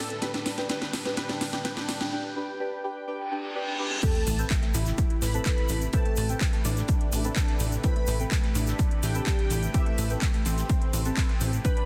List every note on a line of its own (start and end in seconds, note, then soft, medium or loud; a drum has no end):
0.00 2.08 A2 medium
0.00 2.08 D3 medium
0.00 2.08 G3 medium
0.00 0.20 D4 medium
0.00 0.20 G4 medium
0.00 2.08 G4 medium
0.00 0.20 A4 medium
0.00 0.20 B4 medium
0.00 2.08 B4 medium
0.00 0.20 G5 loud
0.00 riser medium
0.10 closed hi-hat soft
0.22 0.55 D4 loud
0.22 0.55 G4 medium
0.22 0.31 B4 loud
0.22 0.55 B4 medium
0.22 0.55 G5 loud
0.22 snare medium
0.22 closed hi-hat medium
0.34 0.43 D4 medium
0.34 snare medium
0.34 closed hi-hat soft
0.46 0.55 D4 medium
0.46 snare medium
0.46 closed hi-hat medium
0.46 open hi-hat loud
0.58 0.68 D4 medium
0.58 0.68 G4 medium
0.58 0.68 B4 medium
0.58 0.68 G5 loud
0.58 snare medium
0.58 closed hi-hat soft
0.69 1.03 D4 loud
0.69 1.02 G4 medium
0.69 1.02 B4 medium
0.69 0.79 B4 loud
0.69 1.02 G5 loud
0.69 snare medium
0.69 snare loud
0.69 closed hi-hat loud
0.69 closed hi-hat medium
0.82 0.91 D4 medium
0.82 snare medium
0.82 closed hi-hat soft
0.93 1.03 D4 medium
0.93 snare loud
0.93 open hi-hat loud
1.05 1.15 D4 medium
1.05 1.15 G4 medium
1.05 1.15 B4 medium
1.05 1.15 G5 loud
1.05 snare medium
1.05 closed hi-hat soft
1.17 1.50 D4 loud
1.17 1.50 G4 medium
1.17 1.50 B4 medium
1.17 1.27 B4 medium
1.17 1.50 G5 loud
1.17 snare loud
1.17 closed hi-hat medium
1.17 closed hi-hat loud
1.29 1.39 D4 medium
1.29 snare medium
1.29 closed hi-hat soft
1.41 1.51 D4 medium
1.41 snare medium
1.41 open hi-hat medium
1.41 open hi-hat loud
1.53 1.63 D4 loud
1.53 1.63 G4 medium
1.53 1.63 B4 medium
1.53 1.63 G5 loud
1.53 snare medium
1.53 closed hi-hat soft
1.65 1.98 D4 loud
1.65 1.98 G4 medium
1.65 1.98 B4 medium
1.65 1.74 B4 loud
1.65 1.98 G5 loud
1.65 snare loud
1.65 closed hi-hat loud
1.65 closed hi-hat medium
1.77 1.86 D4 medium
1.77 snare medium
1.77 closed hi-hat soft
1.88 1.98 D4 medium
1.88 snare loud
1.88 closed hi-hat medium
1.88 open hi-hat loud
2.00 2.10 D4 medium
2.00 2.11 G4 medium
2.00 2.11 B4 medium
2.00 2.10 G5 loud
2.00 snare medium
2.00 closed hi-hat soft
2.12 2.34 D4 loud
2.12 2.34 G4 medium
2.12 2.34 B4 medium
2.12 2.34 G5 loud
2.36 2.58 D4 loud
2.36 2.58 G4 medium
2.36 2.58 B4 loud
2.36 2.58 G5 loud
2.60 2.82 D4 loud
2.60 2.82 G4 medium
2.60 2.82 B4 medium
2.60 2.82 G5 loud
2.84 3.06 D4 loud
2.84 3.06 G4 medium
2.84 3.06 B4 loud
2.84 3.06 G5 loud
3.08 3.30 D4 loud
3.08 3.30 G4 medium
3.08 3.30 B4 medium
3.08 3.30 G5 loud
3.08 reverse cymbal medium
3.31 3.53 D4 loud
3.31 3.53 G4 medium
3.31 3.53 B4 medium
3.31 3.53 G5 loud
3.55 3.77 D4 loud
3.55 3.77 G4 medium
3.55 3.77 B4 medium
3.55 3.77 G5 loud
3.79 4.01 D4 loud
3.79 4.01 G4 loud
3.79 4.01 B4 loud
3.79 4.01 G5 loud
4.03 11.61 C3 medium
4.03 11.61 A3 medium
4.03 4.36 C4 loud
4.03 11.61 E4 medium
4.03 4.12 G4 loud
4.03 11.85 G4 medium
4.03 4.36 A4 medium
4.03 4.46 A4 loud
4.03 4.36 B4 medium
4.03 11.61 B4 medium
4.03 4.36 G5 loud
4.03 4.46 A5 loud
4.03 kick loud
4.03 closed hi-hat loud
4.03 crash loud
4.03 sub drop medium
4.03 shaker soft
4.15 4.24 A3 medium
4.15 closed hi-hat soft
4.27 4.44 A1 medium
4.27 4.36 A3 medium
4.27 closed hi-hat medium
4.27 open hi-hat loud
4.27 shaker medium
4.39 5.32 C4 medium
4.39 5.32 A4 medium
4.39 5.32 B4 medium
4.39 5.32 G5 loud
4.39 closed hi-hat soft
4.39 shaker medium
4.50 4.60 A3 medium
4.50 kick loud
4.50 snare loud
4.50 clap loud
4.50 closed hi-hat medium
4.50 shaker soft
4.62 4.72 A3 medium
4.62 snare medium
4.62 closed hi-hat soft
4.74 4.92 A1 loud
4.74 5.84 E4 medium
4.74 closed hi-hat medium
4.74 open hi-hat loud
4.74 shaker loud
4.86 snare medium
4.86 closed hi-hat soft
4.86 shaker soft
4.98 kick loud
4.98 closed hi-hat loud
4.98 closed hi-hat medium
4.98 shaker soft
5.10 closed hi-hat soft
5.22 5.40 A1 medium
5.22 5.84 B4 loud
5.22 5.84 B5 loud
5.22 snare medium
5.22 open hi-hat medium
5.22 open hi-hat loud
5.22 shaker medium
5.34 5.43 C4 medium
5.34 5.43 A4 medium
5.34 5.43 B4 medium
5.34 5.43 A5 loud
5.34 closed hi-hat soft
5.34 shaker soft
5.46 5.91 C4 medium
5.46 5.91 A4 medium
5.46 5.91 B4 medium
5.46 5.91 A5 loud
5.46 kick loud
5.46 snare loud
5.46 clap loud
5.46 closed hi-hat medium
5.46 shaker soft
5.58 closed hi-hat soft
5.69 5.87 A1 medium
5.69 closed hi-hat medium
5.69 open hi-hat loud
5.69 shaker medium
5.82 closed hi-hat soft
5.82 shaker soft
5.93 6.26 C4 medium
5.93 6.03 E4 loud
5.93 6.26 A4 medium
5.93 6.36 A4 medium
5.93 6.26 B4 medium
5.93 6.26 G5 loud
5.93 6.36 A5 loud
5.93 kick loud
5.93 closed hi-hat loud
5.93 closed hi-hat medium
5.93 shaker soft
6.05 6.15 A3 medium
6.05 closed hi-hat soft
6.16 6.35 A1 loud
6.16 6.27 A3 medium
6.16 closed hi-hat medium
6.16 open hi-hat loud
6.16 shaker medium
6.29 7.22 C4 medium
6.29 7.22 A4 medium
6.29 7.22 B4 medium
6.29 7.22 G5 loud
6.29 closed hi-hat soft
6.29 shaker medium
6.41 6.51 A3 medium
6.41 kick loud
6.41 snare loud
6.41 clap loud
6.41 closed hi-hat medium
6.41 shaker soft
6.53 6.62 A3 medium
6.53 closed hi-hat soft
6.65 6.82 A1 loud
6.65 7.74 D4 medium
6.65 closed hi-hat medium
6.65 open hi-hat loud
6.65 shaker medium
6.77 snare soft
6.77 closed hi-hat soft
6.77 shaker medium
6.88 kick loud
6.88 closed hi-hat medium
6.88 closed hi-hat loud
6.88 shaker soft
7.01 closed hi-hat soft
7.12 7.30 A1 medium
7.12 closed hi-hat medium
7.12 open hi-hat loud
7.12 shaker loud
7.24 7.33 C4 medium
7.24 7.33 A4 medium
7.24 7.33 B4 medium
7.24 7.33 A5 loud
7.24 closed hi-hat soft
7.24 shaker soft
7.36 7.81 C4 medium
7.36 7.81 A4 medium
7.36 7.81 B4 medium
7.36 7.81 A5 loud
7.36 kick loud
7.36 snare loud
7.36 clap loud
7.36 closed hi-hat loud
7.36 closed hi-hat medium
7.36 shaker soft
7.48 closed hi-hat soft
7.60 7.78 A1 medium
7.60 closed hi-hat medium
7.60 open hi-hat loud
7.60 shaker loud
7.72 closed hi-hat soft
7.72 shaker medium
7.83 8.17 C4 loud
7.83 7.93 E4 loud
7.83 8.17 A4 medium
7.83 8.27 B4 loud
7.83 8.17 B4 medium
7.83 8.17 G5 loud
7.83 8.27 B5 loud
7.83 kick loud
7.83 closed hi-hat loud
7.83 closed hi-hat medium
7.83 shaker soft
7.96 8.05 A3 medium
7.96 closed hi-hat soft
8.07 8.25 A1 loud
8.07 8.17 A3 medium
8.07 closed hi-hat medium
8.07 open hi-hat loud
8.07 shaker medium
8.20 9.13 C4 medium
8.20 9.13 A4 medium
8.20 9.13 B4 medium
8.20 9.13 G5 loud
8.20 closed hi-hat soft
8.20 shaker medium
8.31 8.41 A3 medium
8.31 kick loud
8.31 snare loud
8.31 clap loud
8.31 closed hi-hat medium
8.31 shaker soft
8.44 8.53 A3 medium
8.44 snare medium
8.44 closed hi-hat soft
8.55 8.73 A1 loud
8.55 9.65 D4 medium
8.55 closed hi-hat medium
8.55 open hi-hat loud
8.55 shaker medium
8.67 snare medium
8.67 closed hi-hat soft
8.67 shaker medium
8.79 kick loud
8.79 closed hi-hat medium
8.79 shaker soft
8.91 closed hi-hat soft
9.03 9.20 A1 medium
9.03 9.76 G4 loud
9.03 9.74 G5 loud
9.03 snare medium
9.03 open hi-hat loud
9.03 open hi-hat medium
9.03 shaker medium
9.15 9.24 C4 medium
9.15 9.24 A4 medium
9.15 9.24 B4 medium
9.15 9.24 A5 loud
9.15 closed hi-hat soft
9.15 shaker medium
9.27 9.72 C4 medium
9.27 9.72 A4 medium
9.27 9.72 B4 medium
9.27 9.72 A5 loud
9.27 kick loud
9.27 snare loud
9.27 clap loud
9.27 closed hi-hat medium
9.27 shaker soft
9.39 closed hi-hat soft
9.50 9.68 A1 medium
9.50 closed hi-hat medium
9.50 open hi-hat loud
9.50 shaker medium
9.63 closed hi-hat soft
9.63 shaker medium
9.74 10.07 C4 medium
9.74 10.17 E4 loud
9.74 9.84 G4 loud
9.74 10.07 A4 medium
9.74 10.07 B4 medium
9.74 10.17 E5 medium
9.74 10.07 G5 loud
9.74 kick loud
9.74 closed hi-hat medium
9.74 shaker soft
9.86 9.96 A3 medium
9.86 closed hi-hat soft
9.98 10.16 A1 loud
9.98 10.08 A3 medium
9.98 closed hi-hat medium
9.98 open hi-hat loud
9.98 shaker loud
10.10 11.03 C4 medium
10.10 11.03 A4 medium
10.10 11.03 B4 medium
10.10 11.03 G5 loud
10.10 closed hi-hat soft
10.10 shaker medium
10.22 10.32 A3 medium
10.22 kick loud
10.22 snare loud
10.22 clap loud
10.22 closed hi-hat medium
10.22 shaker soft
10.34 10.43 A3 medium
10.34 closed hi-hat soft
10.45 10.63 A1 loud
10.45 11.55 C4 medium
10.45 closed hi-hat medium
10.45 open hi-hat loud
10.45 shaker loud
10.58 snare soft
10.58 closed hi-hat soft
10.58 shaker medium
10.69 kick loud
10.69 closed hi-hat medium
10.69 shaker soft
10.82 closed hi-hat soft
10.93 11.11 A1 medium
10.93 closed hi-hat medium
10.93 open hi-hat loud
10.93 shaker loud
11.05 11.14 C4 loud
11.05 11.14 A4 medium
11.05 11.14 B4 medium
11.05 11.14 A5 loud
11.05 closed hi-hat soft
11.05 shaker medium
11.17 11.62 C4 medium
11.17 11.62 A4 medium
11.17 11.62 B4 medium
11.17 11.62 A5 loud
11.17 kick loud
11.17 snare loud
11.17 clap loud
11.17 closed hi-hat medium
11.17 shaker soft
11.29 closed hi-hat soft
11.41 11.59 A1 medium
11.41 closed hi-hat medium
11.41 open hi-hat loud
11.41 shaker loud
11.53 closed hi-hat soft
11.53 shaker medium
11.65 11.85 B2 medium
11.65 11.85 D3 medium
11.65 11.85 G3 medium
11.65 11.85 D4 loud
11.65 11.85 D4 medium
11.65 11.85 G4 medium
11.65 11.85 B4 medium
11.65 11.74 B4 loud
11.65 11.85 B4 loud
11.65 11.85 G5 loud
11.65 11.85 B5 loud
11.65 kick loud
11.65 closed hi-hat medium
11.65 shaker soft
11.77 11.85 D4 medium
11.77 closed hi-hat soft